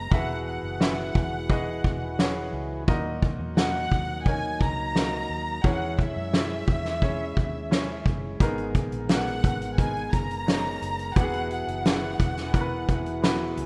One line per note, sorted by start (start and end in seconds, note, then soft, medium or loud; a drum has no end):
0.00 0.13 G#4 medium
0.00 0.14 A#4 medium
0.00 0.13 B4 medium
0.00 0.13 D#5 medium
0.00 0.12 A#5 medium
0.11 0.60 E1 medium
0.11 1.12 B2 medium
0.11 2.85 E3 medium
0.11 2.85 E4 medium
0.11 2.85 F#4 soft
0.11 0.66 F#4 medium
0.11 2.85 G#4 soft
0.11 0.66 G#4 medium
0.11 2.84 B4 medium
0.11 0.66 B4 medium
0.11 0.66 E5 medium
0.11 0.45 F#5 medium
0.11 kick medium
0.46 2.49 F#5 medium
0.63 1.11 F#1 medium
0.80 1.34 F#4 medium
0.80 1.35 G#4 medium
0.80 1.35 B4 medium
0.80 1.35 E5 medium
0.80 snare medium
1.15 1.80 E1 medium
1.15 kick medium
1.50 2.04 F#4 medium
1.50 2.04 G#4 medium
1.50 2.04 B4 medium
1.50 2.04 D#5 medium
1.50 kick medium
1.84 2.49 E1 medium
1.84 kick medium
2.19 2.73 F#4 medium
2.19 2.74 G#4 medium
2.19 2.74 B4 medium
2.19 2.74 C#5 medium
2.19 snare medium
2.53 2.85 C#2 medium
2.88 3.36 D#2 medium
2.88 3.87 A#2 medium
2.88 5.61 F#3 medium
2.88 5.61 A#3 medium
2.88 3.42 D#4 medium
2.88 5.61 D#4 medium
2.88 3.42 F#4 medium
2.88 3.42 A#4 medium
2.88 3.42 D#5 loud
2.88 kick loud
3.22 kick medium
3.39 3.87 E2 medium
3.57 4.11 D#4 medium
3.57 4.11 F#4 medium
3.57 4.11 A#4 medium
3.57 4.11 F#5 medium
3.57 4.23 F#5 medium
3.57 snare loud
3.92 4.56 D#2 medium
3.92 kick medium
4.26 4.80 D#4 medium
4.26 4.80 F#4 medium
4.26 4.80 A#4 medium
4.26 4.80 C#5 medium
4.26 4.61 G#5 medium
4.26 kick medium
4.60 5.25 C#2 medium
4.60 5.65 A#5 medium
4.60 kick medium
4.95 5.49 D#4 medium
4.95 5.49 F#4 medium
4.95 5.50 A#4 medium
4.95 5.50 D#5 medium
4.95 snare medium
5.29 5.61 D#2 medium
5.64 6.12 E2 medium
5.64 6.64 E3 medium
5.64 11.12 G#3 soft
5.64 6.18 C#4 medium
5.64 8.37 C#4 medium
5.64 6.18 E4 medium
5.64 8.37 E4 medium
5.64 6.18 G#4 medium
5.64 6.18 C#5 medium
5.64 6.00 F#5 medium
5.64 kick loud
5.99 8.06 E5 medium
5.99 kick medium
6.16 6.64 F#2 medium
6.33 6.87 C#4 medium
6.33 6.88 E4 medium
6.33 6.87 G#4 medium
6.33 6.88 E5 medium
6.33 snare medium
6.67 7.32 E2 medium
6.67 kick medium
6.85 snare soft
7.02 7.56 C#4 medium
7.02 7.56 E4 medium
7.02 7.56 G#4 medium
7.02 7.56 C#5 medium
7.02 kick medium
7.37 8.01 D#2 medium
7.37 kick medium
7.71 8.25 C#4 medium
7.71 8.25 E4 medium
7.71 8.25 G#4 medium
7.71 8.25 C#5 medium
7.71 snare medium
8.05 8.37 F#1 medium
8.05 kick medium
8.39 8.88 G#1 medium
8.39 9.40 G#2 medium
8.39 9.40 D#3 medium
8.39 11.13 B3 medium
8.39 8.94 B3 medium
8.39 8.94 D#4 medium
8.39 8.95 G#4 medium
8.39 11.13 A#4 soft
8.39 8.95 A#4 loud
8.39 kick loud
8.39 closed hi-hat medium
8.58 closed hi-hat soft
8.75 kick medium
8.75 closed hi-hat medium
8.92 9.40 A#1 medium
8.92 closed hi-hat soft
9.09 9.63 B3 medium
9.09 9.63 D#4 medium
9.09 9.63 G#4 medium
9.09 9.64 A#4 medium
9.09 9.75 F#5 medium
9.09 snare loud
9.09 closed hi-hat medium
9.27 closed hi-hat soft
9.44 10.09 G#1 medium
9.44 kick medium
9.44 closed hi-hat medium
9.62 closed hi-hat soft
9.78 10.32 B3 medium
9.78 10.32 D#4 medium
9.78 10.32 G#4 medium
9.78 10.33 A#4 medium
9.78 10.13 G#5 medium
9.78 kick medium
9.78 closed hi-hat medium
9.97 closed hi-hat soft
10.13 10.78 F#1 medium
10.13 11.17 A#5 medium
10.13 kick medium
10.13 closed hi-hat medium
10.31 closed hi-hat soft
10.46 11.01 B3 medium
10.46 11.01 D#4 medium
10.46 11.01 G#4 medium
10.46 11.01 C#5 medium
10.46 snare medium
10.46 closed hi-hat medium
10.82 11.14 F#1 medium
10.82 closed hi-hat medium
10.99 closed hi-hat soft
11.16 11.64 E1 medium
11.16 12.16 B2 soft
11.16 13.66 E3 medium
11.16 11.70 B3 medium
11.16 11.70 E4 medium
11.16 13.66 E4 soft
11.16 13.66 F#4 soft
11.16 11.70 F#4 medium
11.16 11.23 G4 medium
11.16 13.66 G#4 medium
11.16 13.66 B4 medium
11.16 11.51 F#5 medium
11.16 kick loud
11.16 closed hi-hat medium
11.23 11.74 G#4 medium
11.33 closed hi-hat soft
11.51 13.55 F#5 medium
11.51 closed hi-hat soft
11.68 12.16 F#1 medium
11.68 closed hi-hat soft
11.85 12.39 B3 medium
11.85 12.39 E4 medium
11.85 12.40 F#4 medium
11.85 12.40 G#4 medium
11.85 snare loud
11.85 closed hi-hat medium
12.19 12.85 E1 medium
12.19 kick medium
12.19 closed hi-hat medium
12.37 snare soft
12.37 closed hi-hat soft
12.53 13.08 B3 medium
12.53 13.08 E4 medium
12.53 13.08 F#4 medium
12.53 12.60 A#4 medium
12.53 kick medium
12.53 closed hi-hat medium
12.61 13.12 B4 medium
12.88 13.53 E1 medium
12.88 kick medium
12.88 closed hi-hat medium
13.06 closed hi-hat soft
13.22 13.66 B3 medium
13.22 13.66 E4 medium
13.22 13.66 F#4 medium
13.22 13.66 B4 medium
13.22 snare medium
13.22 closed hi-hat medium
13.57 13.66 C#2 medium
13.57 closed hi-hat medium